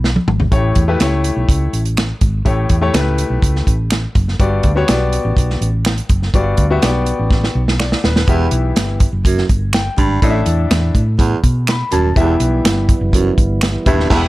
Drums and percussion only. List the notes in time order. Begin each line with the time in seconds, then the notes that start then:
0.04 snare
0.16 high tom
0.28 mid tom
0.40 floor tom
0.52 kick, closed hi-hat
0.75 kick, closed hi-hat
1.00 finger snap, snare, closed hi-hat
1.24 closed hi-hat
1.49 kick, closed hi-hat
1.73 closed hi-hat
1.85 closed hi-hat
1.97 finger snap, snare, closed hi-hat
2.21 kick, closed hi-hat
2.46 kick, closed hi-hat
2.69 kick, closed hi-hat
2.94 finger snap, snare, closed hi-hat
3.18 closed hi-hat
3.42 kick, closed hi-hat
3.56 snare
3.67 kick, closed hi-hat
3.90 finger snap, snare, closed hi-hat
4.15 kick, closed hi-hat
4.28 snare
4.39 kick, closed hi-hat
4.63 kick, closed hi-hat
4.88 finger snap, snare, closed hi-hat
5.12 closed hi-hat
5.37 kick, closed hi-hat
5.50 snare
5.62 closed hi-hat
5.85 finger snap, snare, closed hi-hat
5.97 closed hi-hat
6.09 kick, closed hi-hat
6.22 snare
6.34 kick, closed hi-hat
6.57 kick, closed hi-hat
6.82 finger snap, snare, closed hi-hat
7.06 closed hi-hat
7.31 kick, snare
7.44 snare
7.68 snare
7.80 finger snap, snare
7.92 snare
8.04 snare
8.16 snare
8.27 kick, closed hi-hat
8.51 closed hi-hat
8.76 finger snap, snare, closed hi-hat
9.00 kick, closed hi-hat
9.25 kick, closed hi-hat
9.38 snare
9.49 kick, closed hi-hat
9.73 finger snap, snare, closed hi-hat
9.98 kick, closed hi-hat
10.22 kick, closed hi-hat
10.46 closed hi-hat
10.71 finger snap, snare, closed hi-hat
10.95 kick, closed hi-hat
11.19 kick, closed hi-hat
11.44 kick, closed hi-hat
11.67 finger snap, snare, closed hi-hat
11.91 closed hi-hat
12.16 kick, closed hi-hat
12.40 closed hi-hat
12.65 finger snap, snare, closed hi-hat
12.89 kick, closed hi-hat
13.13 kick, closed hi-hat
13.38 kick, closed hi-hat
13.61 finger snap, snare, closed hi-hat
13.86 kick, closed hi-hat
14.00 snare
14.10 kick, snare, crash